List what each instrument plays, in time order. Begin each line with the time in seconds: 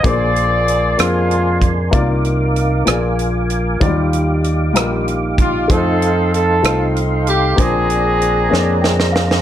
Already playing: tonewheel organ G#5
0.03 fingered electric bass A#1, upright piano A#2 A#3 D4 G#4 C5, horn section F4 G#4 D5, tonewheel organ C6, kick, closed hi-hat
0.36 closed hi-hat
0.68 closed hi-hat
0.97 fingered electric bass F2, horn section G#3 D4 F4, upright piano A#3 D4 G#4 C5, cross-stick, closed hi-hat
1.31 closed hi-hat
1.62 kick, closed hi-hat
1.91 fingered electric bass C2, upright piano C3 A#3 D#4 F4 D5, tonewheel organ D#4 F5 D6, kick, closed hi-hat
2.25 closed hi-hat
2.56 closed hi-hat
2.85 fingered electric bass A#1, upright piano A#2 A#3 F4 G#4 D5, tonewheel organ A#4 F5 G#5, cross-stick, closed hi-hat
3.19 closed hi-hat
3.50 closed hi-hat
3.80 fingered electric bass D#2, upright piano D#3 F#3 D#4 F4 D5, tonewheel organ D#4 G4 F5 D6, kick, closed hi-hat
3.87 upright piano G3
4.13 closed hi-hat
4.44 closed hi-hat
4.73 fingered electric bass A#1, upright piano G3 D#4 F4 A#4, cross-stick, closed hi-hat
5.08 closed hi-hat
5.38 horn section F4, kick, closed hi-hat
5.68 fingered electric bass F2, upright piano A3 D#4 F4 C5, tonewheel organ A4 C6, horn section A4, kick, closed hi-hat
5.72 horn section C4 D#4
6.02 closed hi-hat
6.34 horn section C4 D#4 A4, closed hi-hat
6.63 fingered electric bass C2, upright piano A3 D#4 F4 C5, cross-stick, closed hi-hat
6.96 closed hi-hat
7.27 horn section G4, closed hi-hat
7.56 fingered electric bass A#1, upright piano A#2 A#3 D4 G#4 C5, tonewheel organ G#4 C5 D5 A#5, kick, closed hi-hat
7.60 horn section C4 D4 G#4
7.90 closed hi-hat
8.21 closed hi-hat
8.50 fingered electric bass F2, upright piano A#3 D4 G#4 C#5, snare
8.58 upright piano D5
8.81 upright piano G5, snare
9.00 snare
9.12 upright piano F5, snare
9.31 snare